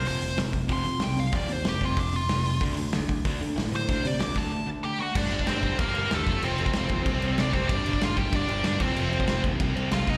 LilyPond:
<<
  \new Staff \with { instrumentName = "Lead electric guitar" } { \time 4/4 \key f \mixolydian \tempo 4 = 189 c''4 r4 c'''4 g''8 f''8 | d''8 c''8 g'8 f'8 d'8 f'4. | r2. r8 c''8~ | c''8 d''8 d'''8 a''4 r8 <g' g''>8 <fis' fis''>8 |
<d' d''>4 <c' c''>4 <bes bes'>4 <a a'>4 | <c' c''>2. <d' d''>8 <c' c''>8 | <d' d''>4 <f' f''>8 <g' g''>8 <d' d''>4 <d' d''>8 <c' c''>8~ | <c' c''>4. r4. <f' f''>8 <ees' ees''>8 | }
  \new Staff \with { instrumentName = "Overdriven electric guitar" } { \clef bass \time 4/4 \key f \mixolydian <f, c f>8 <f, c>8 <f, c>8 <f, c>8 <f, c f>8 <f, c>8 <f, c>8 <f, c>8 | <f, c f>8 <f, c>8 <f, c>8 <f, c f>8 <f, c>8 <f, c>8 <f, c>8 <f, c>8 | <d a d'>8 <d a>8 <d a>8 <d a>8 <d a d'>8 <d a>8 <d a>8 <d a>8 | <d a d'>8 <d a>8 <d a>8 <d a d'>8 <d a>8 <d a>8 <d a>8 <d a>8 |
<g, d g>8 <g, d g>8 <g, d g>8 <g, d g>8 <g, d g>8 <g, d g>8 <g, d g>8 <f, c f>8 | <f, c f>8 <f, c f>8 <f, c f>8 <f, c f>8 <c g c'>8 <c g c'>8 <c g c'>8 <c g c'>8 | <g, d g>8 <g, d g>8 <g, d g>8 <g, d g>8 <g, d g>8 <g, d g>8 <g, d g>8 <f, c f>8 | <f, c f>8 <f, c f>8 <f, c f>8 <f, c f>8 <c g c'>8 <c g c'>8 <c g c'>8 <c g c'>8 | }
  \new Staff \with { instrumentName = "Picked electric bass" } { \clef bass \time 4/4 \key f \mixolydian f,,4 f,,4 f,,8 f,8 c,4 | f,,8 ees,8 f,,4 f,,4 f,,4 | d,4 d,4 d,8 d8 a,4 | d,8 c8 d,4 r2 |
g,,8 g,,8 g,,4 g,,8 g,,8 ees,8 f,,8 | f,,4 f,,8 ees,8 c,8 c,8 c,8 f,,8 | g,,8 g,,8 g,,4 g,,8 g,,8 g,,8 f,,8 | f,,4 f,,8 ees,8 c,8 c,8 c,8 c,8 | }
  \new DrumStaff \with { instrumentName = "Drums" } \drummode { \time 4/4 hho8 hho8 <hho sn>8 <hho bd>8 <hho bd>8 hho8 <hho sn>8 hho8 | <hho bd>8 hho8 <hho sn>8 <hho bd>8 <hho bd>8 hho8 <hho sn>8 hho8 | <hho bd>8 hho8 <hho sn>8 <hho bd>8 <hho bd>8 hho8 <hho sn>8 hho8 | <hho bd>8 hho8 <hho sn>8 <hho bd>8 r4 r4 |
<cymc bd>8 cymc16 bd16 <cymc sn>8 <cymc bd>8 <cymc bd>8 cymc8 <cymc sn>8 <cymc bd>8 | cymc8 cymc16 bd16 <cymc sn>8 <cymc bd>8 <cymc bd>8 cymc8 <cymc sn>8 <cymc bd>8 | <cymc bd>8 cymc16 bd16 <cymc sn>8 <cymc bd>8 <cymc bd>8 cymc8 <cymc sn>8 <cymc bd>8 | cymc8 cymc16 bd16 <cymc sn>8 <cymc bd>8 <cymc bd>8 cymc8 <cymc sn>8 <cymc bd>8 | }
>>